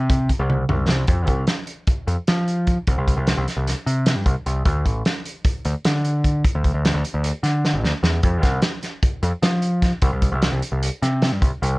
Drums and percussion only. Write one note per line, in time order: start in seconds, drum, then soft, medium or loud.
0.10 kick loud
0.10 closed hi-hat medium
0.29 kick medium
0.29 closed hi-hat medium
0.50 high tom medium
0.69 mid tom medium
0.89 snare medium
1.08 kick medium
1.08 closed hi-hat medium
1.27 kick medium
1.27 closed hi-hat medium
1.47 snare medium
1.47 closed hi-hat medium
1.67 closed hi-hat medium
1.87 kick loud
1.87 closed hi-hat medium
2.08 closed hi-hat medium
2.27 snare loud
2.27 closed hi-hat medium
2.48 closed hi-hat medium
2.67 kick medium
2.67 closed hi-hat medium
2.87 kick medium
2.87 closed hi-hat medium
3.08 kick medium
3.08 closed hi-hat medium
3.27 snare medium
3.27 closed hi-hat medium
3.48 snare soft
3.48 closed hi-hat medium
3.67 snare soft
3.67 closed hi-hat medium
3.87 closed hi-hat medium
4.06 snare loud
4.06 closed hi-hat medium
4.26 kick medium
4.26 closed hi-hat medium
4.46 closed hi-hat medium
4.65 kick medium
4.65 closed hi-hat medium
4.86 kick medium
4.86 closed hi-hat medium
5.05 snare loud
5.05 closed hi-hat medium
5.26 closed hi-hat medium
5.45 kick loud
5.45 closed hi-hat medium
5.65 closed hi-hat medium
5.85 snare loud
5.85 closed hi-hat medium
6.05 closed hi-hat medium
6.24 kick medium
6.24 closed hi-hat medium
6.45 kick medium
6.45 closed hi-hat medium
6.64 kick medium
6.64 closed hi-hat medium
6.85 snare loud
6.85 closed hi-hat medium
7.05 closed hi-hat medium
7.24 closed hi-hat medium
7.43 snare soft
7.43 closed hi-hat medium
7.65 snare medium
7.84 snare medium
8.04 snare medium
8.23 kick medium
8.23 closed hi-hat medium
8.43 kick medium
8.43 snare soft
8.43 closed hi-hat medium
8.62 snare loud
8.62 closed hi-hat medium
8.83 snare soft
8.83 closed hi-hat medium
9.03 kick medium
9.03 closed hi-hat medium
9.23 closed hi-hat medium
9.43 snare loud
9.43 closed hi-hat medium
9.62 closed hi-hat medium
9.82 kick medium
9.82 snare soft
9.82 closed hi-hat medium
10.02 kick loud
10.02 closed hi-hat medium
10.22 kick medium
10.22 closed hi-hat medium
10.42 snare loud
10.42 closed hi-hat medium
10.62 closed hi-hat medium
10.83 closed hi-hat medium
11.03 snare soft
11.03 closed hi-hat medium
11.22 snare loud
11.22 closed hi-hat medium
11.42 kick medium
11.42 closed hi-hat medium
11.63 closed hi-hat medium